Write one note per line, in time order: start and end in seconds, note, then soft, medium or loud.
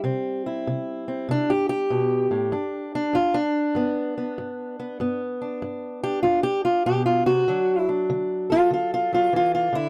0.00 0.62 C3 medium
0.00 2.53 G3 medium
0.00 0.46 G4 soft
0.04 1.07 C4 medium
0.46 1.50 E4 medium
0.67 1.25 C3 medium
1.08 1.29 C4 soft
1.29 1.86 C3 medium
1.29 1.51 D4 loud
1.50 1.68 G4 medium
1.69 2.94 G4 loud
1.90 2.30 B2 medium
2.31 2.53 A2 medium
2.52 3.10 G2 medium
2.52 2.95 D4 medium
2.95 3.15 D4 medium
3.13 3.71 G2 medium
3.13 3.35 F4 medium
3.34 5.20 D4 loud
3.75 4.33 G2 medium
3.75 4.16 B3 medium
4.18 4.78 B3 soft
4.38 4.96 G2 medium
4.80 4.98 B3 soft
5.00 5.57 G2 medium
5.00 7.45 B3 medium
5.42 6.03 D4 soft
5.62 6.19 G2 medium
6.04 7.45 D4 soft
6.04 6.22 G4 loud
6.23 6.81 G2 medium
6.23 6.43 F4 medium
6.43 6.64 G4 loud
6.65 6.85 F4 medium
6.86 7.26 B2 medium
6.86 7.05 G4 loud
7.06 7.26 F4 medium
7.26 7.47 C3 medium
7.26 7.88 F#4 loud
7.48 8.05 D3 medium
7.48 9.11 F#3 medium
7.48 7.88 D4 medium
7.89 8.51 D4 medium
8.10 8.67 D3 medium
8.50 8.72 F4 loud
8.50 9.74 A4 medium
8.71 9.28 D3 medium
8.71 8.93 F4 medium
8.94 9.13 F4 loud
9.13 9.32 F#3 soft
9.13 9.34 F4 loud
9.33 9.72 E3 medium
9.33 9.53 F4 loud
9.55 9.74 F4 medium
9.73 9.89 D3 medium
9.73 9.89 E4 loud